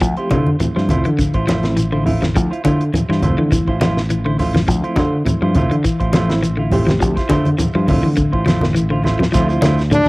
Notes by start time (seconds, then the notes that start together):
0.00 D2 F3 C4 E4, kick, closed hi-hat, shekere
0.17 F3 A3 C4 E4 F4 G4 C5, muted fingered electric bass stroke, closed hi-hat
0.31 C3 D3 A3 E4 F4 C5, kick, closed hi-hat, high conga, shekere
0.47 high conga
0.60 E3 F3 A3 C4 E4, closed hi-hat, low conga, shekere
0.76 G2 F3 E4 F4 C5, snare
0.89 C2 A3 E4 F4 C5, closed hi-hat, high conga, low conga, shekere
1.05 D3 E3, closed hi-hat
1.19 D3, kick, closed hi-hat, low conga, shekere
1.34 A1 E4 F4 C5, kick, closed hi-hat
1.47 F3 A3 E4 F4 C5, snare, closed hi-hat, high conga, shekere
1.63 F3 A3 C4 E4, snare, closed hi-hat
1.77 E3, closed hi-hat, shekere
1.92 D3 E4 F4 C5
2.04 F3 A3 C4 E4 F4, muted clean electric guitar stroke, open hi-hat, low conga
2.08 shekere
2.22 F3, snare, closed hi-hat, high conga
2.36 D2 F3, kick, closed hi-hat, shekere
2.51 E4 F4 C5, muted fingered electric bass stroke, closed hi-hat
2.64 D3 A3 E4 F4 C5, kick, closed hi-hat, high conga, shekere
2.81 closed hi-hat
2.94 E3, closed hi-hat, low conga, shekere
3.09 G2 E3 E4 F4 C5, snare
3.22 C2 F3 A3 C4 E4 F4 C5, closed hi-hat, high conga, low conga, shekere
3.38 D3 E3
3.52 E3, kick, closed hi-hat, high conga, low conga, shekere
3.68 A1 E4 F4 C5, kick
3.81 F3 E4 F4 C5, snare, closed hi-hat, high conga, shekere
3.97 snare
4.10 E3, closed hi-hat, shekere
4.25 D3 E4 C5
4.38 A3 E4 F4 C5, open hi-hat, low conga, shekere
4.54 F3, snare, high conga
4.66 D2 F3 C4 E4, kick, closed hi-hat, shekere
4.81 F3 A3 C4 E4 F4 C5, muted fingered electric bass stroke, closed hi-hat
4.96 D3 A3 F4 C5, kick, snare, closed hi-hat, high conga, shekere
5.24 E3 F3 A3 C4 E4, closed hi-hat, low conga, shekere
5.42 G2 F3 E4 F4 C5
5.55 C2 A3 E4 F4 C5, closed hi-hat, high conga, low conga, shekere
5.71 D3 E3, closed hi-hat
5.84 E3, kick, closed hi-hat, shekere
6.00 A1 E4 F4 C5, kick, closed hi-hat
6.13 F3 A3 E4 F4 C5, snare, closed hi-hat, high conga, shekere
6.27 F3 A3 C4 E4, snare, closed hi-hat
6.43 E3, closed hi-hat, shekere
6.57 D3 E4 F4
6.70 F3 A3 C4 E4 F4 G4 C5, open hi-hat, high conga, low conga, shekere
6.87 F3, snare, closed hi-hat, high conga
7.00 D2 F3, kick, closed hi-hat, shekere
7.17 E4 F4 C5, muted fingered electric bass stroke, kick, snare, closed hi-hat
7.29 D3 A3 E4 F4 C5, kick, snare, closed hi-hat, high conga, shekere
7.45 closed hi-hat, high conga
7.58 E3, closed hi-hat, low conga, shekere
7.75 G2 F3 E4 F4 C5
7.86 C2 F3 A3 C4 D4 E4 F4, kick, open hi-hat, high conga, low conga, shekere
7.90 C5
8.03 D3 E3
8.16 D3, kick, closed hi-hat, low conga, shekere
8.33 A1 E4 F4 C5, kick
8.46 F3 A3 E4 F4 C5, snare, closed hi-hat, high conga, shekere
8.61 snare, high conga
8.74 E3, closed hi-hat, shekere
8.90 D3 E4 F4 C5
9.04 A3 E4 F4 C5, snare, low conga, shekere
9.19 F3, snare, low conga
9.32 D2 F3 A3 C4 E4 F4 C5, kick, snare, closed hi-hat, high conga, shekere
9.49 E4 F4 C5, shekere
9.62 D2 D3 A3 E4 F4 C5, snare, closed hi-hat, high conga, shekere
9.79 snare, shekere
9.91 D3 D4, closed hi-hat, high conga, low conga, shekere